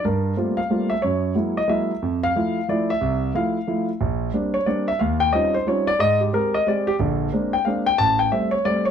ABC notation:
X:1
M:3/4
L:1/8
Q:"Swing" 1/4=181
K:Bblyd
V:1 name="Grand piano"
B2 z f2 e | _d2 z _e _f2- | _f =f3 d e- | e2 f3 z |
z3 _d =d e | f g _e c _d =d | _e G B e d G | z3 g f g |
a g e _d =d _d |]
V:2 name="Grand piano"
G,,2 [G,A,B,CF] z [G,A,B,CF] z | _G,,2 [_G,_A,B,_F] z [G,A,B,F] z | F,,2 [F,A,E] z [F,A,E] z | C,,2 [F,A,E] z [F,A,E] z |
B,,,2 [G,B,CD] z [G,B,CD] z | _E,,2 [G,C_D_EF] z [G,CDEF] z | _A,,2 [_A,CG] z [A,CG] z | [B,,,D,]2 [_A,B,CD] z [A,B,CD] z |
A,,,2 [G,A,C] z [G,A,C] z |]